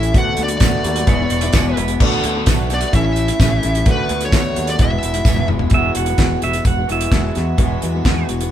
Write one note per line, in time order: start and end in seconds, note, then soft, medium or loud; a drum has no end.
0.00 0.11 A1 medium
0.00 0.14 A2 medium
0.00 0.12 E3 medium
0.00 0.14 E3 medium
0.00 0.12 A3 medium
0.00 0.14 A3 medium
0.00 0.13 C#4 medium
0.00 0.15 C#4 medium
0.00 0.13 E4 medium
0.00 0.15 E4 medium
0.00 0.13 A4 medium
0.00 0.14 A4 medium
0.00 0.13 C#5 medium
0.00 0.15 C#5 medium
0.00 0.18 E5 medium
0.00 closed hi-hat medium
0.13 0.33 D2 loud
0.13 0.36 D3 medium
0.13 0.37 A3 medium
0.13 0.38 B3 medium
0.13 1.08 D4 medium
0.13 0.38 F#4 medium
0.13 1.06 F#4 medium
0.13 1.08 F#4 medium
0.13 1.07 A4 medium
0.13 1.07 B4 medium
0.13 1.06 B4 medium
0.13 1.06 D5 medium
0.13 kick loud
0.13 closed hi-hat medium
0.18 0.40 F#5 loud
0.37 0.56 D2 medium
0.37 0.50 D3 medium
0.37 0.50 A3 medium
0.37 0.50 B3 medium
0.37 0.48 F#4 medium
0.37 closed hi-hat medium
0.43 1.76 D5 medium
0.48 0.60 A3 soft
0.48 0.61 B3 medium
0.48 0.61 F#4 medium
0.48 closed hi-hat medium
0.60 0.80 D2 medium
0.60 0.84 D3 medium
0.60 0.85 A3 medium
0.60 0.85 B3 medium
0.60 0.85 F#4 medium
0.60 kick loud
0.60 snare loud
0.60 closed hi-hat medium
0.60 tambourine medium
0.84 1.03 D#2 medium
0.84 0.97 D3 medium
0.84 0.97 A3 medium
0.84 0.97 B3 medium
0.84 0.96 F#4 medium
0.84 closed hi-hat medium
0.96 1.09 A3 medium
0.96 1.08 B3 medium
0.96 1.08 F#4 medium
0.96 closed hi-hat medium
1.07 1.26 E1 loud
1.07 1.20 E2 medium
1.07 1.20 B2 medium
1.07 1.21 E3 medium
1.07 1.21 G#3 loud
1.07 2.00 B3 medium
1.07 1.20 B3 medium
1.07 2.00 E4 medium
1.07 1.20 E4 medium
1.07 1.99 G#4 medium
1.07 2.01 G#4 medium
1.07 1.99 B4 medium
1.07 2.00 B4 medium
1.07 1.31 C#5 loud
1.07 1.99 E5 medium
1.07 kick loud
1.07 closed hi-hat medium
1.21 1.44 E3 soft
1.21 1.43 G#3 soft
1.21 1.42 B3 medium
1.21 1.42 E4 medium
1.30 1.49 E1 medium
1.30 1.54 C#5 medium
1.30 closed hi-hat medium
1.41 1.54 E3 medium
1.41 1.54 G#3 soft
1.41 1.55 B3 soft
1.41 1.55 E4 medium
1.41 closed hi-hat medium
1.53 1.72 E1 medium
1.53 1.78 E2 medium
1.53 1.78 B2 medium
1.53 1.76 E3 medium
1.53 1.77 G#3 medium
1.53 1.77 B3 medium
1.53 1.66 C#5 loud
1.53 kick loud
1.53 snare loud
1.53 closed hi-hat medium
1.53 tambourine loud
1.57 1.79 E4 medium
1.69 2.01 B4 medium
1.77 1.96 E1 loud
1.77 2.00 E3 medium
1.77 2.01 G#3 medium
1.77 2.00 B3 medium
1.77 2.02 E4 medium
1.77 closed hi-hat medium
1.88 closed hi-hat medium
2.00 2.19 D2 loud
2.00 2.21 D3 medium
2.00 2.22 A3 medium
2.00 2.23 B3 medium
2.00 2.93 D4 medium
2.00 2.92 F#4 medium
2.00 2.93 F#4 medium
2.00 2.23 F#4 loud
2.00 2.93 A4 medium
2.00 2.58 A4 medium
2.00 2.93 B4 medium
2.00 2.92 B4 medium
2.00 2.92 D5 medium
2.00 kick loud
2.00 crash loud
2.23 2.42 D2 medium
2.23 2.35 D3 medium
2.23 2.36 A3 medium
2.23 2.35 B3 medium
2.23 2.34 F#4 medium
2.23 closed hi-hat medium
2.36 2.47 A3 medium
2.36 2.47 B3 medium
2.36 2.47 F#4 medium
2.46 2.84 B1 medium
2.46 2.68 D3 medium
2.46 2.70 A3 medium
2.46 2.70 B3 medium
2.46 2.71 F#4 medium
2.46 kick loud
2.46 snare loud
2.46 closed hi-hat medium
2.46 tambourine medium
2.70 2.82 D3 medium
2.70 2.83 A3 medium
2.70 2.82 B3 medium
2.70 2.81 F#4 medium
2.70 closed hi-hat medium
2.74 2.94 D5 loud
2.81 2.93 A3 medium
2.81 2.94 B3 soft
2.81 2.94 F#4 medium
2.81 closed hi-hat medium
2.93 3.30 A1 medium
2.93 3.05 A2 medium
2.93 3.06 E3 medium
2.93 3.06 A3 medium
2.93 3.86 C#4 medium
2.93 3.04 C#4 medium
2.93 3.85 E4 medium
2.93 3.86 E4 medium
2.93 3.03 E4 medium
2.93 3.85 A4 medium
2.93 3.84 A4 medium
2.93 3.85 C#5 medium
2.93 3.86 C#5 medium
2.93 3.90 E5 loud
2.93 kick loud
2.93 closed hi-hat medium
3.04 3.30 A3 soft
3.04 3.29 C#4 soft
3.04 3.28 E4 medium
3.16 closed hi-hat medium
3.28 3.40 A3 soft
3.28 3.40 C#4 soft
3.28 3.41 E4 medium
3.28 closed hi-hat medium
3.40 3.58 A1 loud
3.40 3.64 A2 medium
3.40 3.62 E3 medium
3.40 3.63 A3 medium
3.40 3.63 C#4 medium
3.40 3.64 E4 medium
3.40 kick loud
3.40 snare loud
3.40 closed hi-hat medium
3.40 tambourine loud
3.63 3.82 A1 medium
3.63 3.75 E3 medium
3.63 3.75 A3 medium
3.63 3.75 C#4 medium
3.63 3.74 E4 medium
3.63 closed hi-hat medium
3.75 3.86 A3 soft
3.75 3.87 C#4 soft
3.75 3.87 E4 medium
3.75 closed hi-hat medium
3.85 4.05 D2 medium
3.85 4.08 D3 medium
3.85 4.09 A3 medium
3.85 4.10 B3 medium
3.85 4.78 D4 medium
3.85 4.79 D4 medium
3.85 4.78 F#4 medium
3.85 4.11 F#4 medium
3.85 4.78 A4 medium
3.85 4.78 B4 medium
3.85 kick loud
3.85 closed hi-hat medium
3.91 4.25 B4 medium
4.09 4.28 D2 medium
4.09 4.22 D3 medium
4.09 4.22 A3 medium
4.09 4.22 B3 medium
4.09 4.20 F#4 medium
4.09 closed hi-hat medium
4.21 4.32 A3 soft
4.21 4.33 B3 soft
4.21 4.33 F#4 medium
4.21 closed hi-hat medium
4.25 4.69 C#5 medium
4.32 4.51 D2 medium
4.32 4.54 D3 medium
4.32 4.56 A3 medium
4.32 4.56 B3 medium
4.32 4.57 F#4 medium
4.32 kick loud
4.32 snare loud
4.32 closed hi-hat medium
4.32 tambourine medium
4.55 4.75 D#2 medium
4.55 4.68 D3 medium
4.55 4.68 A3 medium
4.55 4.68 B3 medium
4.55 4.67 F#4 medium
4.55 closed hi-hat medium
4.67 4.81 A3 soft
4.67 4.81 B3 medium
4.67 4.80 F#4 medium
4.67 4.81 D5 medium
4.67 closed hi-hat medium
4.76 4.98 E1 medium
4.76 5.22 E2 medium
4.76 5.72 B3 medium
4.76 5.71 E4 medium
4.76 5.71 G#4 medium
4.76 5.71 B4 medium
4.76 kick loud
4.76 closed hi-hat medium
4.80 4.92 E2 medium
4.80 4.92 B2 medium
4.80 4.92 E3 medium
4.80 4.91 G#3 medium
4.80 4.91 B3 medium
4.80 4.90 E4 medium
4.80 5.72 G#4 medium
4.80 5.47 E5 medium
4.91 5.15 E3 soft
4.91 5.14 G#3 soft
4.91 5.14 B3 soft
4.91 5.12 E4 medium
5.03 5.22 E1 medium
5.03 closed hi-hat medium
5.14 5.27 E3 soft
5.14 5.27 G#3 soft
5.14 5.27 B3 soft
5.14 5.26 E4 medium
5.14 closed hi-hat medium
5.23 5.44 E1 medium
5.23 5.69 E2 medium
5.23 kick loud
5.23 snare medium
5.23 tambourine medium
5.28 5.50 E2 medium
5.28 5.51 B2 medium
5.28 5.49 E3 medium
5.28 5.50 G#3 medium
5.28 5.51 B3 medium
5.28 5.51 E4 medium
5.36 high tom medium
5.46 5.71 B3 medium
5.46 5.70 E4 medium
5.46 mid tom medium
5.50 5.68 E1 medium
5.50 5.62 E3 medium
5.50 5.62 G#3 medium
5.50 5.62 B3 medium
5.50 5.60 E4 medium
5.59 5.72 G#3 soft
5.59 5.72 B3 soft
5.59 5.73 E4 soft
5.59 floor tom medium
5.64 5.72 E3 soft
5.70 5.89 E1 medium
5.70 5.96 E2 medium
5.70 5.96 B2 medium
5.70 5.93 E3 medium
5.70 5.93 G#3 medium
5.70 5.95 B3 medium
5.70 8.51 E4 medium
5.70 8.51 F#4 medium
5.70 5.96 F#4 medium
5.70 8.51 G#4 medium
5.70 8.51 B4 medium
5.70 kick loud
5.70 closed hi-hat medium
5.74 5.96 E5 loud
5.95 6.13 E1 medium
5.95 6.07 E3 medium
5.95 6.07 G#3 medium
5.95 6.07 B3 medium
5.95 6.06 F#4 medium
5.95 6.42 F#5 medium
5.95 closed hi-hat medium
6.06 6.17 E3 soft
6.06 6.17 G#3 soft
6.06 6.18 B3 soft
6.06 closed hi-hat medium
6.18 6.36 E1 medium
6.18 6.42 E2 medium
6.18 6.42 B2 medium
6.18 6.40 E3 medium
6.18 6.41 G#3 medium
6.18 6.42 B3 medium
6.18 6.42 F#4 medium
6.18 kick loud
6.18 snare loud
6.18 closed hi-hat medium
6.41 6.60 E1 medium
6.41 6.54 E3 medium
6.41 6.54 G#3 medium
6.41 6.53 B3 medium
6.41 6.52 F#4 medium
6.41 6.66 E5 medium
6.41 closed hi-hat medium
6.53 6.78 E3 soft
6.53 6.77 G#3 soft
6.53 6.76 B3 medium
6.53 6.76 F#4 medium
6.53 closed hi-hat medium
6.65 6.83 E1 loud
6.65 6.89 F#5 medium
6.65 kick loud
6.65 closed hi-hat medium
6.77 6.86 E3 soft
6.77 6.87 G#3 soft
6.77 6.88 B3 soft
6.77 6.89 F#4 soft
6.88 7.07 E1 medium
6.88 7.10 E2 medium
6.88 7.11 B2 medium
6.88 7.11 E3 medium
6.88 7.11 G#3 medium
6.88 7.12 B3 medium
6.88 7.12 F#4 medium
6.88 closed hi-hat medium
6.92 8.27 E5 medium
7.01 closed hi-hat medium
7.11 7.29 E1 medium
7.11 7.36 E2 medium
7.11 7.36 B2 medium
7.11 7.34 E3 medium
7.11 7.35 G#3 medium
7.11 7.35 B3 medium
7.11 7.36 F#4 medium
7.11 kick loud
7.11 snare loud
7.11 closed hi-hat medium
7.35 7.54 E2 medium
7.35 7.58 E3 medium
7.35 7.58 G#3 medium
7.35 7.58 B3 medium
7.35 7.58 F#4 medium
7.35 snare soft
7.35 closed hi-hat medium
7.58 7.76 E1 medium
7.58 7.82 E2 medium
7.58 7.82 B2 medium
7.58 7.80 E3 medium
7.58 7.81 G#3 medium
7.58 7.82 B3 medium
7.58 7.83 F#4 medium
7.58 kick loud
7.58 closed hi-hat medium
7.81 8.00 E2 medium
7.81 7.93 E3 medium
7.81 7.94 G#3 medium
7.81 7.93 B3 medium
7.81 7.92 F#4 medium
7.81 closed hi-hat medium
7.93 8.04 E3 medium
7.93 8.04 G#3 medium
7.93 8.05 B3 medium
7.93 8.05 F#4 medium
8.04 8.29 E2 medium
8.04 8.23 E2 medium
8.04 8.29 B2 medium
8.04 8.26 E3 medium
8.04 8.27 G#3 medium
8.04 8.28 B3 medium
8.04 8.29 F#4 medium
8.04 kick loud
8.04 snare loud
8.04 closed hi-hat medium
8.28 8.47 E1 medium
8.28 8.40 E3 medium
8.28 8.41 G#3 medium
8.28 8.40 B3 medium
8.28 8.39 F#4 medium
8.28 closed hi-hat medium
8.41 8.51 E3 soft
8.41 8.51 G#3 medium
8.41 8.51 B3 medium
8.41 8.51 F#4 medium
8.41 closed hi-hat medium